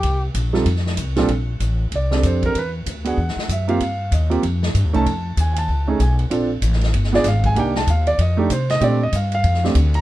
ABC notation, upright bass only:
X:1
M:4/4
L:1/8
Q:"Swing" 1/4=191
K:Bb
V:1 name="Upright bass" clef=bass
C,,2 B,,,2 F,,2 C,,2 | B,,,2 A,,,2 C,,2 F,,2 | =E,,2 D,,2 E,, z ^F,,2 | G,,2 E,,2 F,,2 (3G,, E,, C,, |
F,,2 E,,2 ^C,,2 _C,,2 | B,,,2 A,,,2 G,,,2 _A,,,2 | C,,2 E,,2 F,,2 C,2 | B,,2 G,,2 F,,2 D,,2 |]